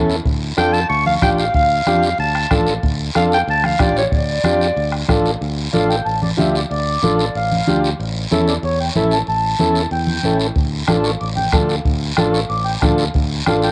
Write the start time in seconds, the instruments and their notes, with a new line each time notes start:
Already playing: fingered electric bass E2, transistor combo organ C#4 E4 A4
0.10 short guiro
0.25 fingered electric bass D2, bombo low, long guiro
0.57 fingered electric bass F2, transistor combo organ D4 F4 A4, clarinet G5, bombo rim, high conga, short guiro
0.73 clarinet A5, short guiro
0.89 fingered electric bass D2, clarinet C#6, long guiro
1.06 clarinet F5, high conga
1.22 fingered electric bass A1, transistor combo organ D4 F4 G4, clarinet G5, bombo low, bombo rim, high conga, short guiro
1.38 clarinet F5, short guiro
1.54 fingered electric bass D2, clarinet F5, bombo low, long guiro
1.86 fingered electric bass F2, transistor combo organ D4 F4 G4, bombo rim, high conga, short guiro
2.03 short guiro
2.18 fingered electric bass D2, clarinet A5, long guiro
2.35 bombo rim
2.51 fingered electric bass A1, transistor combo organ D4 F4 A4, bombo low, bombo rim, high conga, short guiro
2.66 short guiro
2.83 fingered electric bass D2, bombo low, long guiro
3.15 fingered electric bass F2, transistor combo organ D4 F4 A4, clarinet F5, bombo rim, high conga, short guiro
3.32 clarinet G5, short guiro
3.47 fingered electric bass D2, clarinet A5, long guiro
3.64 clarinet F5, bombo rim, high conga
3.79 fingered electric bass A1, transistor combo organ D4 F4 G4, clarinet D5, bombo low, bombo rim, high conga, short guiro
3.97 clarinet C#5, short guiro
4.12 fingered electric bass D2, clarinet D5, bombo low, long guiro
4.44 fingered electric bass F2, transistor combo organ D4 F4 G4, bombo rim, high conga, short guiro
4.61 short guiro
4.76 fingered electric bass D2, long guiro
4.92 bombo rim
5.08 fingered electric bass A1, transistor combo organ D4 F4 A4, bombo low, bombo rim, high conga, short guiro
5.26 short guiro
5.41 fingered electric bass D2, long guiro
5.73 fingered electric bass A1, transistor combo organ D4 F4 A4, accordion F5, high conga, short guiro
5.89 accordion G5, short guiro
6.05 fingered electric bass A1, accordion A5, long guiro
6.22 accordion D5, high conga
6.37 fingered electric bass D2, transistor combo organ D4 F4 G4, accordion E5, high conga, short guiro
6.51 accordion E5
6.55 accordion D5, short guiro
6.71 fingered electric bass D2, accordion D5, long guiro
7.02 fingered electric bass A1, transistor combo organ D4 F4 A4, high conga, short guiro
7.19 short guiro
7.35 fingered electric bass A1, accordion F5, long guiro
7.52 high conga
7.67 fingered electric bass D2, transistor combo organ D4 F4 G4, high conga, short guiro
7.84 short guiro
8.00 fingered electric bass A1, long guiro
8.31 fingered electric bass E2, transistor combo organ C#4 E4 A4, accordion E5, high conga, short guiro
8.48 accordion D5, short guiro
8.63 fingered electric bass E2, accordion C#5, long guiro
8.80 accordion G5
8.95 fingered electric bass A1, transistor combo organ C#4 E4 A4, accordion E5, high conga, short guiro
9.11 accordion A5, short guiro
9.27 fingered electric bass A1, accordion A5, long guiro
9.59 fingered electric bass E2, transistor combo organ C#4 E4 A4, high conga, short guiro
9.75 short guiro
9.91 fingered electric bass E2, accordion G5, long guiro
10.07 high conga
10.23 fingered electric bass A1, transistor combo organ C#4 E4 A4, high conga, short guiro
10.40 short guiro
10.56 fingered electric bass D2, bombo low, long guiro
10.88 fingered electric bass A1, transistor combo organ D4 F4 A4, accordion A5, bombo rim, high conga, short guiro
11.04 accordion C#6, short guiro
11.20 fingered electric bass A1, accordion D6, long guiro
11.37 accordion G5, high conga
11.52 fingered electric bass D2, transistor combo organ D4 F4 A4, accordion A5, bombo low, bombo rim, high conga, short guiro
11.69 short guiro
11.85 fingered electric bass D2, bombo low, long guiro
12.17 fingered electric bass A1, transistor combo organ D4 F4 A4, accordion A5, bombo rim, high conga, short guiro
12.33 accordion C#6, short guiro
12.50 fingered electric bass A1, accordion D6, long guiro
12.65 accordion G5
12.81 fingered electric bass D2, transistor combo organ D4 F4 A4, accordion A5, bombo low, bombo rim, high conga, short guiro
12.98 short guiro
13.14 fingered electric bass D2, bombo low, long guiro
13.46 fingered electric bass A1, transistor combo organ D4 F4 A4, accordion F5, bombo rim, high conga, short guiro
13.62 accordion G5, short guiro